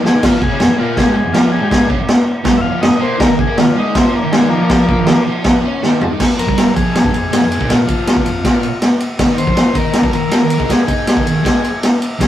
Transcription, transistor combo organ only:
0.07 0.24 G#4 loud
0.25 0.42 F4 loud
0.43 0.59 G#4 loud
0.60 0.78 G#4 medium
0.80 0.97 F4 medium
0.97 1.15 G#4 medium
1.12 1.15 G4 medium
1.12 1.34 G#4 loud
1.33 1.52 F4 medium
1.52 1.69 G#4 loud
1.64 1.67 G4 medium
1.70 1.89 G#4 loud
2.57 2.61 E5 medium
2.61 2.81 F5 loud
2.81 3.01 D#5 medium
3.01 3.20 C5 loud
3.20 3.38 A#4 loud
3.41 3.58 G#4 medium
3.60 3.77 F4 loud
3.79 3.96 D#4 medium
3.95 4.13 C4 medium
4.15 4.33 A#3 loud
4.32 4.50 G#3 medium
4.49 5.21 F3 loud
4.49 5.23 A#3 loud
6.39 6.74 A#4 loud
6.76 7.12 G#4 medium
7.14 7.72 G#4 loud
7.71 8.79 F4 medium
9.38 9.77 C5 loud
9.76 10.11 A#4 loud
10.14 10.72 A#4 loud
10.72 11.79 G#4 medium
12.22 12.28 G#4 medium

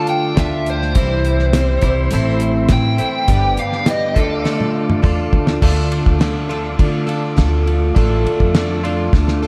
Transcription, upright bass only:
0.37 0.92 D2 loud
0.96 1.79 C2 loud
1.83 2.09 C2 loud
2.13 2.67 A1 loud
2.71 2.97 A1 loud
3.28 3.55 G1 loud
4.16 4.43 D2 medium
5.04 5.30 E2 medium
5.33 5.59 D2 loud
5.62 6.02 D2 loud
6.07 6.75 D2 medium
6.80 7.40 D3 medium
7.38 7.93 D2 medium
7.97 8.23 A1 loud
8.25 8.38 D2 medium
8.40 9.09 F2 medium
9.13 9.47 D2 loud

